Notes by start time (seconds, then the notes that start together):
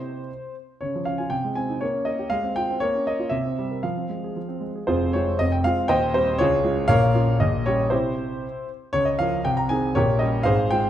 Already playing: C3 E4 G4 C5
0.81 C#3 C#5
0.96 F3
1.05 C#4 F5
1.18 F4 G#5
1.30 C3 G5
1.45 G#3
1.56 C4 G#5
1.70 D#4
1.81 A#3 C#5
1.94 C#4
2.05 A#3 D#5
2.19 G4
2.30 G#3 F5
2.44 C4
2.56 F4 G5
2.71 C4
2.80 A#3 C#5
2.95 C#4
3.07 A#3 D#5
3.20 F4
3.30 C3 E5
3.45 C4
3.59 G3
3.71 A#4
3.83 F3 F5
3.97 C4
4.09 G#3
4.24 G#4
4.37 F3
4.49 C4
4.61 G#3
4.75 G#4
4.87 F1 F2 F4 G#4 C5
5.13 G#3 C4 F4 C#5
5.39 F1 F2 D#5
5.52 G5
5.64 G#3 C4 F4 F5
5.88 D#1 D#2 C5 D#5 G5
6.14 G3 C4 G4 C5
6.38 C#2 C#3 F4 G#4 C#5
6.64 G#3 C#4 F4
6.88 A#1 A#2 A#4 C#5 F5
7.14 A#3 C#4 F4
7.40 A#1 A#2 D#5
7.66 G3 C#4 G4 C#5
7.90 C3 E4 G4 C5
8.93 C#2 C#3 C#5
9.05 D#5
9.19 F3 F4 A#4 F5
9.45 C2 C3 G5
9.57 A#5
9.69 D#3 C4 G#4 G#5
9.95 A#1 A#2 G4 A#4 C#5
10.19 G3 C#4 G4 D#5
10.43 G#1 G#2 G#4 C5 F5
10.71 G#3 C4 F4 G5